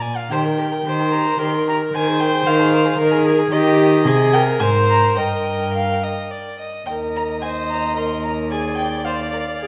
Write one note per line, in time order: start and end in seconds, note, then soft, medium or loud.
0.00 0.11 D5 medium
0.00 0.18 G#5 medium
0.16 0.31 F5 medium
0.30 0.79 D#3 medium
0.30 0.47 G4 medium
0.30 0.39 C5 medium
0.30 1.13 G5 loud
0.45 0.59 A#4 medium
0.58 0.73 G4 medium
0.58 0.67 A#4 medium
0.72 0.86 A#4 medium
0.85 1.33 D#3 medium
0.85 1.02 G4 medium
0.85 1.40 C5 loud
1.00 1.14 A#4 medium
1.11 1.27 G4 medium
1.11 1.39 A#5 loud
1.26 1.39 A#4 medium
1.38 1.87 D#3 medium
1.38 1.55 G4 medium
1.38 1.95 A#4 loud
1.38 1.67 C6 loud
1.54 1.69 A#4 medium
1.68 1.83 G4 medium
1.68 1.77 A#5 loud
1.82 1.95 A#4 medium
1.93 2.40 D#3 loud
1.93 2.09 A#4 medium
1.93 3.00 C5 loud
1.93 2.22 G#5 loud
2.07 2.22 G#4 medium
2.20 2.35 A#4 medium
2.20 2.49 G5 loud
2.33 2.46 G#4 medium
2.45 2.92 D#3 loud
2.45 2.61 A#4 medium
2.45 3.26 F5 loud
2.59 2.75 G#4 medium
2.73 2.87 A#4 medium
2.85 2.98 G#4 medium
2.98 3.45 D#3 loud
2.98 3.13 A#4 medium
2.98 3.25 A#4 loud
3.11 3.27 G#4 medium
3.26 3.53 G#4 loud
3.26 3.40 A#4 loud
3.39 3.51 G#4 medium
3.51 4.06 D#3 loud
3.51 4.05 G4 loud
3.51 4.02 G4 loud
3.51 4.29 D#5 loud
4.05 4.61 C3 loud
4.05 4.61 G#4 loud
4.05 4.35 G#4 loud
4.33 4.62 A#4 loud
4.33 4.41 G5 loud
4.60 5.17 G#2 loud
4.60 5.18 A#4 medium
4.60 5.20 C5 loud
4.60 4.68 G#5 loud
4.90 5.17 A#5 loud
5.16 6.67 G2 medium
5.16 6.60 A#4 medium
5.16 5.68 D#5 medium
5.16 6.57 G5 loud
5.74 6.05 F5 medium
6.03 6.32 D#5 medium
6.31 6.59 D5 medium
6.59 6.87 D#5 medium
6.86 9.67 D#2 medium
6.86 7.39 A#4 medium
6.86 8.47 D#5 medium
6.86 6.94 G5 medium
7.16 7.24 A#5 loud
7.42 7.95 C5 medium
7.42 7.50 G#5 medium
7.69 7.99 A#5 loud
7.97 8.53 A#4 medium
7.97 8.23 C6 loud
8.24 8.32 A#5 medium
8.51 9.05 G#4 medium
8.51 9.67 D5 medium
8.51 8.77 G#5 loud
8.77 9.06 G5 loud
9.05 9.14 C5 medium
9.05 9.67 F5 medium
9.33 9.41 A#4 medium
9.59 9.67 G#4 medium